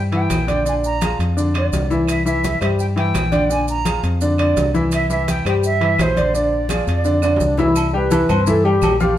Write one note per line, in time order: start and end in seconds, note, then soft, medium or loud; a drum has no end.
0.00 0.26 G2 medium
0.12 0.41 E3 medium
0.12 0.41 E4 medium
0.12 0.41 E5 medium
0.12 0.63 G5 medium
0.12 high conga soft
0.12 high timbale medium
0.30 1.13 A#1 medium
0.30 high conga medium
0.30 high timbale medium
0.30 low timbale medium
0.30 claves medium
0.30 maracas medium
0.47 0.62 D3 medium
0.47 0.62 D4 medium
0.47 0.62 D5 medium
0.47 high conga medium
0.47 high timbale medium
0.47 maracas soft
0.65 0.94 D3 medium
0.65 0.95 D4 medium
0.65 0.95 D5 medium
0.65 0.74 G#5 medium
0.65 high conga soft
0.65 maracas medium
0.84 1.18 A#5 loud
0.84 high conga soft
0.84 maracas medium
1.01 1.30 F3 medium
1.01 1.31 F4 medium
1.01 1.31 G#4 medium
1.01 high conga medium
1.01 high timbale medium
1.01 low timbale medium
1.01 claves medium
1.01 maracas medium
1.19 1.68 F2 medium
1.19 high conga soft
1.19 high timbale medium
1.19 maracas soft
1.37 1.51 D3 medium
1.37 1.51 D4 medium
1.37 1.51 D5 medium
1.37 maracas medium
1.54 1.84 D3 medium
1.54 1.84 D4 medium
1.54 1.84 D5 medium
1.54 2.05 D5 medium
1.54 high conga soft
1.54 high timbale medium
1.54 claves medium
1.72 2.55 C2 medium
1.72 high conga medium
1.72 high timbale medium
1.72 low timbale medium
1.72 maracas medium
1.90 2.19 E3 medium
1.90 2.20 E4 medium
1.90 2.20 E5 medium
1.90 high conga medium
1.90 maracas soft
2.07 2.25 E5 medium
2.07 high conga soft
2.07 high timbale medium
2.07 claves medium
2.07 maracas medium
2.25 2.55 E3 medium
2.25 2.55 E4 medium
2.25 2.59 E5 medium
2.25 2.55 E5 medium
2.25 maracas medium
2.44 high conga medium
2.44 high timbale medium
2.44 low timbale medium
2.44 maracas medium
2.61 3.11 G2 medium
2.61 2.90 G3 medium
2.61 2.90 G4 medium
2.61 2.91 C5 medium
2.61 2.68 E5 medium
2.61 high conga soft
2.61 high timbale medium
2.61 claves medium
2.61 maracas soft
2.79 2.86 G5 medium
2.79 high conga soft
2.79 maracas medium
2.96 3.25 E3 medium
2.96 3.26 E4 medium
2.96 3.26 E5 medium
2.96 3.52 G5 loud
2.96 high conga soft
2.96 high timbale medium
3.14 3.98 A#1 medium
3.14 high conga medium
3.14 high timbale medium
3.14 low timbale medium
3.14 claves medium
3.14 maracas medium
3.31 3.46 D3 medium
3.31 3.46 D4 medium
3.31 3.47 D5 medium
3.31 high conga medium
3.31 high timbale medium
3.31 maracas soft
3.50 3.79 D3 medium
3.50 3.79 D4 medium
3.50 3.79 D5 medium
3.50 3.68 G#5 loud
3.50 high conga soft
3.50 maracas medium
3.68 4.02 A#5 loud
3.68 high conga soft
3.68 maracas medium
3.85 4.14 F3 medium
3.85 4.15 F4 medium
3.85 4.15 G#4 medium
3.85 high conga medium
3.85 high timbale medium
3.85 low timbale medium
3.85 claves medium
3.85 maracas medium
4.03 4.53 F2 medium
4.03 high conga soft
4.03 high timbale medium
4.03 maracas soft
4.21 4.36 D3 medium
4.21 4.36 D4 medium
4.21 4.36 D5 medium
4.21 high conga soft
4.21 maracas medium
4.38 4.68 D3 medium
4.38 4.68 D4 medium
4.38 4.68 D5 medium
4.38 high conga soft
4.38 high timbale medium
4.38 claves medium
4.43 4.74 D5 medium
4.56 5.40 C2 medium
4.56 high conga medium
4.56 high timbale medium
4.56 low timbale medium
4.56 maracas medium
4.74 5.03 E3 medium
4.74 5.03 E4 medium
4.74 5.04 E5 medium
4.74 high conga medium
4.74 maracas soft
4.92 5.09 E5 loud
4.92 high conga soft
4.92 high timbale medium
4.92 claves medium
4.92 maracas medium
5.10 5.39 E3 medium
5.10 5.39 E4 medium
5.10 5.39 E5 medium
5.10 5.27 E5 medium
5.10 high conga soft
5.10 maracas medium
5.28 5.45 G5 loud
5.28 high conga medium
5.28 high timbale medium
5.28 low timbale medium
5.28 maracas medium
5.45 5.95 G2 medium
5.45 5.75 G3 medium
5.45 5.75 G4 medium
5.45 5.75 C5 medium
5.45 5.54 G5 medium
5.45 high conga soft
5.45 high timbale medium
5.45 claves medium
5.45 maracas soft
5.64 6.02 E5 loud
5.64 high conga soft
5.64 maracas medium
5.81 6.10 E3 medium
5.81 6.10 E4 medium
5.81 6.10 E5 medium
5.81 high conga soft
5.81 high timbale medium
5.98 6.81 A#1 medium
5.98 6.34 C5 medium
5.98 high conga medium
5.98 high timbale medium
5.98 low timbale medium
5.98 claves medium
5.98 maracas medium
6.16 6.31 D3 medium
6.16 6.31 D4 medium
6.16 6.31 D5 medium
6.16 high conga medium
6.16 high timbale medium
6.16 maracas soft
6.34 6.63 D3 medium
6.34 6.63 D4 medium
6.34 6.63 D5 medium
6.34 7.37 D5 medium
6.34 high conga soft
6.34 maracas medium
6.52 high conga soft
6.69 6.99 F3 medium
6.69 6.99 F4 medium
6.69 6.99 G#4 medium
6.69 high conga medium
6.69 high timbale medium
6.69 low timbale medium
6.69 claves medium
6.69 maracas medium
6.87 7.37 F2 medium
6.87 high conga soft
6.87 high timbale medium
6.87 maracas soft
7.05 7.19 D3 medium
7.05 7.19 D4 medium
7.05 7.20 D5 medium
7.05 high conga soft
7.05 maracas medium
7.22 7.52 D3 medium
7.22 7.52 D4 medium
7.22 7.52 D5 medium
7.22 high conga soft
7.22 high timbale medium
7.22 claves medium
7.22 maracas medium
7.36 8.23 C2 medium
7.36 high conga medium
7.36 low timbale medium
7.36 maracas medium
7.43 7.58 D4 medium
7.58 7.73 E3 medium
7.58 7.73 E4 medium
7.58 7.93 E4 loud
7.58 7.73 E5 medium
7.58 high conga medium
7.58 low timbale medium
7.58 maracas soft
7.76 high conga soft
7.76 low agogo loud
7.76 claves medium
7.76 maracas medium
7.93 8.08 G3 medium
7.93 8.08 G4 medium
7.93 8.44 B4 loud
7.93 8.08 G5 medium
7.93 high conga soft
8.11 8.26 E3 medium
8.11 8.26 E4 medium
8.11 8.26 E5 medium
8.11 high conga loud
8.11 low agogo medium
8.11 maracas medium
8.29 8.79 G2 loud
8.29 8.44 C4 medium
8.29 8.44 C5 medium
8.29 8.44 C6 medium
8.29 high conga soft
8.29 low conga medium
8.29 low agogo loud
8.29 claves medium
8.29 maracas soft
8.47 8.62 E3 medium
8.47 8.62 E4 medium
8.47 8.66 A4 loud
8.47 8.62 E5 medium
8.47 high conga soft
8.47 low conga medium
8.47 maracas medium
8.64 8.94 G3 medium
8.64 9.00 G4 loud
8.64 8.94 G4 medium
8.64 8.94 G5 medium
8.64 high conga soft
8.64 low agogo medium
8.82 9.18 A#1 medium
8.82 high conga medium
8.82 low timbale medium
8.82 low agogo loud
8.82 claves medium
8.82 maracas medium
9.00 9.15 F3 medium
9.00 9.15 F4 medium
9.00 9.17 G4 loud
9.00 9.15 F5 medium
9.00 high conga medium
9.00 maracas soft